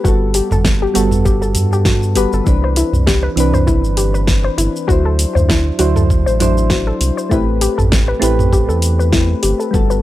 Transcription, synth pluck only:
0.04 F#4
0.35 G4
0.52 A4
0.82 G4
0.95 F#4
1.25 G4
1.42 A4
1.73 G4
1.86 F#4
2.16 G4
2.34 A4
2.64 C5
2.77 E4
3.07 G4
3.23 B4
3.54 C5
3.67 E4
3.97 G4
4.14 B4
4.44 C5
4.58 E4
4.88 F#4
5.05 A4
5.35 C5
5.49 E4
5.79 F#4
5.96 A4
6.26 C5
6.40 E4
6.70 F#4
6.87 A4
7.17 C5
7.31 E4
7.61 G4
7.78 A4
8.08 B4
8.22 E4
8.53 G4
8.69 A4
8.99 B4
9.13 E4
9.43 G4
9.60 A4
9.90 B4

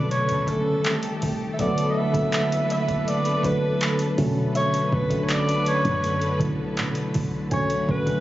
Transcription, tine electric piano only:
Already playing: C#3 D3 F#3 A3 C#4
0.47 D3 F#3 A3 C#4
0.84 D#3 G3 A3 C4
1.58 D3 F#3 A3 B3
2.14 D3 F#3 A3 A#3
2.23 B3
3.43 D3 F#3 A3 D4
4.17 D3 F#3 A3 C#4
5.10 D3 F#3 A3 C#4
5.18 D4
6.39 D3 F#3 A3 E4
7.50 D3 F#3 A3 C#4
8.06 D3 F#3 A3 C#4

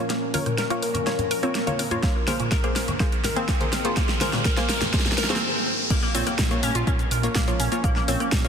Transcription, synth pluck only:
Already playing: A#3 F4 C#5
0.34 A#3 F4 C#5
0.70 A#3 F4 C#5
1.07 A#3 F4 C#5
1.43 A#3 F4 C#5
1.67 A#3 F4 C#5
1.91 A#3 F4 C#5
2.28 A#3 G#4 C5
2.64 A#3 G#4 C5
3.00 A#3 G#4 C5
3.36 A#3 G#4 C5
3.61 A#3 G#4 C5
3.85 A#3 G#4 C5
4.21 A#3 G#4 C5
4.57 A#3 G#4 C5
4.94 A#3 G#4 C5
5.30 A#3 G#4 C5
6.14 A#3 F4 C#5
6.51 A#3 F4 C#5
6.87 A#3 F4 C#5
7.23 A#3 F4 C#5
7.48 A#3 F4 C#5
7.72 A#3 F4 C#5
8.08 A#3 F4 C#5
8.45 A#3 F4 C#5

